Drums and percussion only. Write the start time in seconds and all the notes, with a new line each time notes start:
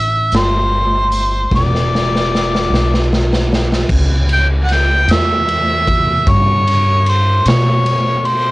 0.32 snare, closed hi-hat
1.12 closed hi-hat
1.51 kick, snare
1.75 snare
1.95 snare
2.15 snare
2.35 snare
2.55 snare
2.74 snare
2.94 snare
3.13 snare
3.33 snare
3.53 snare
3.72 snare
3.89 kick, crash
4.29 ride
4.68 snare, ride
5.08 snare, ride
5.48 ride
5.87 kick, ride
6.27 kick, ride
6.67 ride
7.06 ride
7.46 snare, ride
7.86 ride
8.25 ride